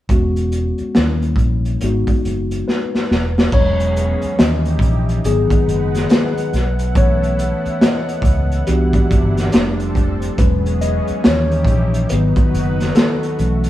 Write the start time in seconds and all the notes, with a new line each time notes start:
0.09 E1 G#3 B3 C#4 F#4, kick, closed hi-hat
0.36 closed hi-hat
0.52 closed hi-hat
0.78 muted fretless electric bass stroke, closed hi-hat
0.95 D#2 E3 A#3 C#4 E4, snare, closed hi-hat
1.03 G3
1.22 closed hi-hat
1.36 A#1, kick, closed hi-hat
1.65 closed hi-hat
1.81 G#1 G#3 B3 D#4 F#4, closed hi-hat
2.07 kick, closed hi-hat
2.25 F#1, closed hi-hat
2.51 closed hi-hat
2.68 B4, snare
2.95 snare
3.11 E1, snare
3.38 snare
3.51 E1 E3 F#3 G#3 B3 C#4 G#4 C#5, kick, crash
3.80 closed hi-hat
3.96 closed hi-hat
4.22 muted fretless electric bass stroke, closed hi-hat
4.37 D#2 E3 G3 C#4 D#4 E4 G4 D#5, snare, closed hi-hat
4.65 closed hi-hat
4.79 A#1, kick, closed hi-hat
5.09 closed hi-hat
5.23 G#1 D#3 F#3 G#3 B3 D#4 G#4 B4 F#5, closed hi-hat
5.50 kick, closed hi-hat
5.68 F#1, closed hi-hat
5.95 snare, closed hi-hat
6.10 B4, snare, closed hi-hat
6.38 closed hi-hat
6.52 B1 B3 E4 A4, snare, closed hi-hat
6.79 closed hi-hat
6.95 E3 A3 C#4 C#5, kick, closed hi-hat
7.23 closed hi-hat
7.39 closed hi-hat
7.66 muted fretless electric bass stroke, closed hi-hat
7.81 D#5, snare, closed hi-hat
8.09 closed hi-hat
8.22 C#2, kick, closed hi-hat
8.52 closed hi-hat
8.67 C2 C3 E3 B3 D4 E4 F#4 G4, closed hi-hat
8.93 kick, closed hi-hat
9.11 G1, kick, closed hi-hat
9.37 snare, closed hi-hat
9.52 F1 F3 G3 A3 C4 D4 A4, snare, closed hi-hat
9.80 closed hi-hat
9.95 kick, closed hi-hat
10.22 closed hi-hat
10.38 E1 E3 F#3 G#3 B3 C#4 G#4 B4, kick, closed hi-hat
10.66 closed hi-hat
10.81 D#5, closed hi-hat
11.07 muted fretless electric bass stroke, closed hi-hat
11.23 D#2 E3 G3 D#4 E4 G4 C#5, snare, closed hi-hat
11.27 C#4
11.52 closed hi-hat
11.65 A#1, kick, closed hi-hat
11.94 closed hi-hat
12.09 G#1 D#3 F#3 B3 D#4 F#4 B4, closed hi-hat
12.36 kick, closed hi-hat
12.54 F#1, closed hi-hat
12.80 snare, closed hi-hat
12.95 A4, snare, closed hi-hat
13.23 closed hi-hat
13.38 B1 E3 A3 B3 C#4 A4 E5, closed hi-hat
13.64 closed hi-hat